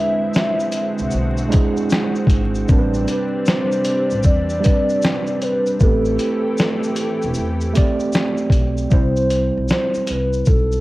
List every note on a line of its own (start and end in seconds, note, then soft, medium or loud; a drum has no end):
0.00 2.65 D3 medium
0.00 0.48 G#3 medium
0.00 2.65 G#3 medium
0.00 8.88 C4 medium
0.00 0.45 D4 medium
0.00 0.46 E4 medium
0.00 0.72 E4 medium
0.00 0.46 B4 medium
0.00 1.93 E5 loud
0.34 snare loud
0.34 shaker medium
0.60 shaker soft
0.72 2.67 F#4 medium
0.72 closed hi-hat medium
0.72 shaker medium
0.98 1.12 C2 medium
0.98 shaker soft
1.11 1.48 B1 medium
1.11 shaker medium
1.38 shaker soft
1.49 2.27 G#3 medium
1.49 2.28 D4 medium
1.49 2.28 E4 medium
1.49 2.29 G#4 loud
1.49 closed hi-hat medium
1.49 shaker soft
1.54 kick loud
1.77 shaker soft
1.90 snare loud
1.90 shaker medium
2.16 shaker soft
2.27 2.63 G#1 medium
2.27 kick medium
2.27 closed hi-hat medium
2.27 shaker soft
2.55 shaker soft
2.68 3.04 A1 loud
2.68 5.78 C3 medium
2.68 3.75 G3 medium
2.68 5.78 G3 medium
2.68 3.75 C4 medium
2.68 5.78 D4 medium
2.68 3.76 D4 medium
2.68 2.79 A#4 medium
2.68 kick loud
2.68 shaker medium
2.78 3.80 B4 medium
2.94 shaker soft
3.08 3.50 B4 medium
3.08 closed hi-hat medium
3.08 shaker soft
3.46 4.25 C5 loud
3.46 snare loud
3.46 shaker medium
3.72 shaker soft
3.85 closed hi-hat medium
3.85 shaker medium
4.11 4.24 A1 medium
4.11 shaker soft
4.23 4.59 E2 medium
4.23 5.43 D5 loud
4.23 kick medium
4.23 shaker medium
4.50 shaker soft
4.60 5.39 G3 medium
4.60 5.39 C4 medium
4.60 5.40 D4 medium
4.60 5.41 B4 medium
4.60 closed hi-hat medium
4.60 shaker soft
4.66 kick medium
4.90 shaker soft
5.02 snare loud
5.02 shaker medium
5.27 shaker soft
5.42 5.83 B4 loud
5.42 closed hi-hat medium
5.42 shaker soft
5.67 shaker soft
5.80 6.15 A1 medium
5.80 8.89 E3 medium
5.80 6.86 A3 medium
5.80 8.89 A3 medium
5.80 5.89 B3 medium
5.80 8.89 G4 medium
5.80 6.87 G4 medium
5.80 8.15 A4 loud
5.80 6.88 B4 medium
5.80 kick loud
5.80 shaker medium
5.87 6.90 C4 medium
6.05 shaker soft
6.19 closed hi-hat medium
6.19 shaker soft
6.58 snare loud
6.58 shaker medium
6.83 shaker soft
6.96 closed hi-hat medium
6.96 shaker medium
7.22 7.36 E1 medium
7.22 shaker soft
7.34 7.72 E2 medium
7.34 shaker medium
7.61 shaker soft
7.73 8.51 A3 medium
7.73 8.52 C4 medium
7.73 8.52 G4 medium
7.73 8.53 D5 loud
7.73 kick medium
7.73 closed hi-hat medium
7.73 shaker medium
8.00 shaker soft
8.13 snare loud
8.13 shaker medium
8.38 shaker soft
8.50 8.86 B1 medium
8.50 kick medium
8.50 closed hi-hat medium
8.50 shaker soft
8.78 shaker soft
8.90 9.49 C2 loud
8.90 9.97 G3 medium
8.90 9.98 C4 medium
8.90 9.98 E4 medium
8.90 9.99 C5 loud
8.90 9.67 C5 loud
8.90 kick loud
8.90 shaker medium
9.17 shaker soft
9.30 closed hi-hat medium
9.30 shaker soft
9.57 9.69 B1 medium
9.68 10.11 C5 medium
9.68 snare loud
9.68 shaker medium
9.94 muted upright bass stroke soft
9.94 shaker soft
10.07 10.44 C2 medium
10.07 10.47 B4 medium
10.07 closed hi-hat medium
10.07 shaker medium
10.33 shaker soft
10.46 10.80 B1 medium
10.46 10.80 A4 loud
10.46 kick medium
10.46 shaker medium
10.72 shaker soft